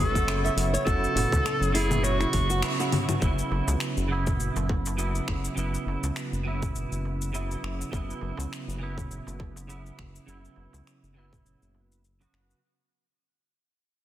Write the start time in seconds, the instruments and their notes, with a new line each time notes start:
Already playing: analog synth bass F#1, clean electric guitar C#3 F#3 B3 E4, clarinet A4, analog synth pad C#5 E5 F#5 C#6
0.15 nylon-string guitar F#5, kick, darbuka tek, shaker
0.27 clean electric guitar C#3 F#3 B3 E4, finger snap, darbuka ka, shaker
0.44 nylon-string guitar E5, shaker
0.56 analog synth bass F#1, open hi-hat, darbuka ka
0.73 nylon-string guitar C#5, shaker
0.85 analog synth bass F#1, clean electric guitar C#3 F#3 B3, nylon-string guitar F#4, clarinet A4, kick, shaker
0.89 clean electric guitar E4
1.04 shaker
1.15 analog synth bass F#1, nylon-string guitar F#4, open hi-hat, darbuka ka, darbuka dum
1.32 analog synth bass C#2, kick, darbuka tek, shaker
1.45 nylon-string guitar A4, finger snap, shaker
1.60 analog synth bass F#1, shaker
1.72 clean electric guitar C#3 F#3 B3, nylon-string guitar E4, clarinet G#4, open hi-hat
1.77 clean electric guitar E4
1.91 darbuka ka, low conga, darbuka dum, shaker
2.03 clarinet F#4, nylon-string guitar C#5, shaker
2.20 nylon-string guitar E4, finger snap, shaker
2.33 analog synth bass F#1, kick, open hi-hat, darbuka ka
2.50 nylon-string guitar F#4, shaker
2.62 clean electric guitar C#3 F#3 B3 E4, finger snap, shaker
2.79 nylon-string guitar F#4, darbuka tek, shaker
2.92 open hi-hat, low conga
3.09 nylon-string guitar F#4, darbuka tek, low conga, shaker
3.20 analog synth bass F#1, clean electric guitar C#3 F#3 B3 E4, kick, shaker
3.39 shaker
3.51 analog synth bass F#1, darbuka ka
3.67 analog synth bass C#2, darbuka tek, shaker
3.80 finger snap, shaker
3.97 analog synth bass F#1, shaker
4.08 clean electric guitar C#3 F#3 B3
4.12 clean electric guitar E4
4.27 kick, darbuka ka, darbuka dum, shaker
4.39 analog synth bass F#1, shaker
4.56 analog synth bass F#1, darbuka tek, shaker
4.69 kick, darbuka ka, darbuka tek
4.86 darbuka tek, shaker
4.97 clean electric guitar C#3 F#3 B3 E4, darbuka ka, shaker
5.15 shaker
5.28 analog synth bass F#1, finger snap, kick, darbuka ka
5.45 shaker
5.55 analog synth bass F#1, clean electric guitar C#3 F#3 B3, shaker
5.59 clean electric guitar E4
5.75 shaker
5.86 analog synth bass F#1, darbuka ka
6.03 analog synth bass C#2, darbuka tek, shaker
6.16 finger snap, shaker
6.32 analog synth bass F#1, shaker
6.43 clean electric guitar C#3 F#3 B3 E4
6.62 kick, darbuka ka, darbuka dum, shaker
6.75 analog synth bass F#1, shaker
6.91 analog synth bass F#1, shaker
7.05 darbuka ka
7.22 shaker
7.33 clean electric guitar C#3 F#3 B3 E4, shaker
7.51 shaker
7.63 analog synth bass F#1, finger snap
7.80 darbuka tek, shaker
7.91 analog synth bass F#1, clean electric guitar C#3 F#3 B3, kick, shaker
7.95 clean electric guitar E4
8.10 shaker
8.21 analog synth bass F#1, darbuka ka
8.37 analog synth bass C#2, darbuka tek, shaker
8.53 finger snap, shaker
8.68 analog synth bass F#1, shaker
8.78 clean electric guitar C#3 F#3 B3
8.83 clean electric guitar E4
8.97 kick, darbuka ka, darbuka dum, shaker
9.10 analog synth bass F#1, shaker
9.27 analog synth bass F#1, darbuka tek, shaker
9.39 kick, darbuka ka, darbuka tek
9.56 darbuka tek, shaker
9.67 clean electric guitar C#3 F#3 B3 E4, darbuka ka, shaker
9.86 shaker
9.98 analog synth bass F#1, finger snap, kick, darbuka ka
10.16 shaker
10.26 analog synth bass F#1, clean electric guitar C#3 F#3 B3 E4, shaker
10.45 shaker
10.56 analog synth bass F#1, darbuka ka
10.73 analog synth bass C#2, darbuka tek, shaker
10.87 finger snap, shaker
11.03 analog synth bass F#1, shaker
11.13 clean electric guitar C#3 F#3 B3
11.18 clean electric guitar E4
11.33 kick, darbuka ka, darbuka dum, shaker
11.45 analog synth bass F#1, shaker
11.62 analog synth bass F#1, shaker
11.74 darbuka ka
11.92 shaker
12.05 shaker
12.20 clean electric guitar C#3 F#3 B3 F#4, darbuka tek, shaker
12.33 analog synth bass F#1, finger snap
12.49 darbuka tek, shaker